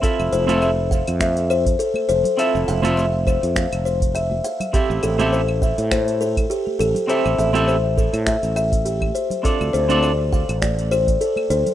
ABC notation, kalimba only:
X:1
M:4/4
L:1/16
Q:"Swing 16ths" 1/4=102
K:Flyd
V:1 name="Kalimba"
A2 c2 e2 f2 e2 c2 A2 c2 | e2 f2 e2 c2 f2 c2 e2 f2 | G2 A2 c2 e2 c2 A2 G z A2 | c2 e2 c2 A2 e z e2 G z c2 |
A2 c2 d2 f2 d2 c2 A z c2 |]